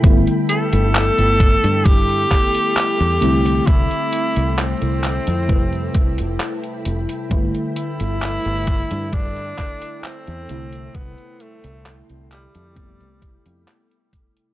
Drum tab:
HH |xxxxxxxxxxxxxxxx|xxxxxxxxxxxxxxxx|xxxxxxxxxxxxxxxx|xxxxxxxxxxxxxxxx|
CP |----x-----x-x---|----x-x-----x---|----x-----x-x---|----x-x-----x---|
BD |o-----o-o-o-----|o-------o-o-----|o-----o-o-o-----|o-------o-o---o-|